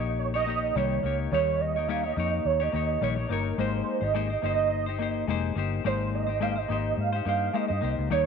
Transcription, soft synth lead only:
Already playing: D#5
0.19 C#5
0.35 D#5
0.76 C#5
1.32 C#5
1.60 D#5
1.88 F5
2.04 D#5
2.45 C#5
2.62 D#5
3.02 C#5
3.30 A#4
3.59 C5
4.03 D#5
4.44 D#5
5.86 C5
6.15 D#5
6.42 F5
6.57 D#5
6.99 F5
7.28 F5
7.56 D#5
8.12 C#5

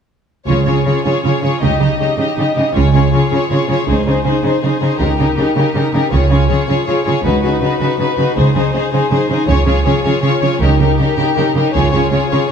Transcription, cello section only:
0.49 C#3
0.67 C#3
0.86 C#3
1.05 C#3
1.24 C#3
1.43 C#3
1.62 C#3
1.81 C#3
2.00 C#3
2.18 C#3
2.38 C#3
2.57 C#3
2.75 C#3
2.94 C#3
3.13 C#3
3.31 C#3
3.51 C#3
3.70 C#3
3.88 C#3
4.07 C#3
4.25 C#3
4.43 C#3
4.63 C#3
4.82 C#3
5.00 C#3
5.18 C#3
5.37 C#3
5.57 C#3
5.75 C#3
5.93 C#3
6.12 C#3
6.30 C#3
6.50 C#3
6.69 C#3
6.88 C#3
7.07 C#3
7.25 C#3
7.44 C#3
7.62 C#3
7.81 C#3
7.99 C#3
8.17 C#3
8.36 C#3
8.55 C#3
8.74 C#3
8.92 C#3
9.12 C#3
9.30 C#3
9.49 C#3
9.67 C#3
9.86 C#3
10.05 C#3
10.23 C#3
10.42 C#3
10.61 C#3
10.80 C#3
10.99 C#3
11.18 C#3
11.37 C#3
11.56 C#3
11.75 C#3
11.94 C#3
12.12 C#3
12.32 C#3

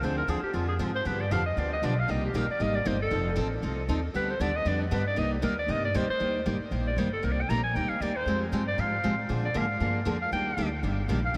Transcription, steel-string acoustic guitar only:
0.03 D3 F3 C4 D4 G#4
0.28 D3 F3 C4 D4 G#4
0.54 D3 F3 C4 D4 G#4
0.79 D3 F3 C4 D4 G#4
1.05 D3 F3 B3 D4 G4
1.31 D3 F3 B3 D4 G4
1.57 D3 F3 B3 D4 G4
1.83 D3 F3 B3 D4 G4
2.08 C3 G3 A#3 D#4 G4
2.34 C3 G3 A#3 D#4 G4
2.60 C3 G3 A#3 D#4 G4
2.85 C3 G3 A#3 D#4 G4
3.11 F3 C4 D#4 A4
3.36 F3 C4 D#4 A4
3.62 F3 C4 D#4 A4
3.89 F3 C4 D#4 A4
4.14 D3 G3 B3 D4 G4
4.40 D3 G3 B3 D4 G4
4.65 D3 G3 B3 D4 G4
4.91 D3 G3 B3 D4 G4
5.16 C3 G3 A#3 D#4 G4
5.42 C3 G3 A#3 D#4 G4
5.68 C3 G3 A#3 D#4 G4
5.94 C3 G3 A#3 D#4 G4
6.20 D#3 G3 A#3 D#4 G4
6.46 D#3 G3 A#3 D#4 G4
6.71 D#3 G3 A#3 D#4 G4
6.98 D#3 G3 A#3 D#4 G4
7.23 C3 G3 A#3 D#4 G4
7.50 C3 G3 A#3 D#4 G4
7.76 C3 G3 A#3 D#4 G4
8.02 C3 G3 A#3 D#4 G4
8.27 F3 G#3 C4 G4
8.52 F3 G#3 C4 G4
8.78 F3 G#3 C4 G4
9.04 F3 G#3 C4 G4
9.29 D3 F3 A#3 D4 G#4
9.54 D3 F3 A#3 D4 G#4
9.80 D3 F3 A#3 D4 G#4
10.05 D3 F3 A#3 D4 G#4
10.32 D#3 G3 A#3 D4 G4
10.58 D#3 G3 A#3 D4 G4
10.83 D#3 G3 A#3 D4 G4
11.09 D#3 G3 A#3 D4 G4
11.34 C3 G3

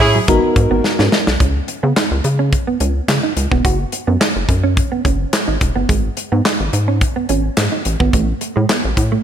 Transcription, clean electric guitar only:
0.00 muted clean electric guitar stroke
0.15 F#3
0.28 G#3
0.43 muted clean electric guitar stroke
0.71 B3
0.84 muted clean electric guitar stroke
0.99 C#4
1.12 D#4
1.40 C#4
1.68 muted clean electric guitar stroke
1.83 B3
1.96 D#4
2.24 muted clean electric guitar stroke
2.39 C#4
2.52 muted clean electric guitar stroke
2.67 B3
2.81 C#4
3.23 D#4
3.37 muted clean electric guitar stroke
3.51 B3
3.65 F#4
3.93 muted clean electric guitar stroke
4.07 B3
4.21 D#4
4.49 muted clean electric guitar stroke
4.64 C#4
4.77 muted clean electric guitar stroke
4.92 B3
5.05 C#4
5.48 D#4
5.61 muted clean electric guitar stroke
5.76 B3
5.89 G#3
6.17 muted clean electric guitar stroke
6.32 B3
6.45 D#4
6.73 muted clean electric guitar stroke
6.88 C#4
7.01 muted clean electric guitar stroke
7.16 B3
7.29 C#4
7.72 D#4
7.85 muted clean electric guitar stroke
8.00 B3
8.13 A3
8.41 muted clean electric guitar stroke
8.56 G#3
8.69 B3
8.97 muted clean electric guitar stroke
9.12 A3

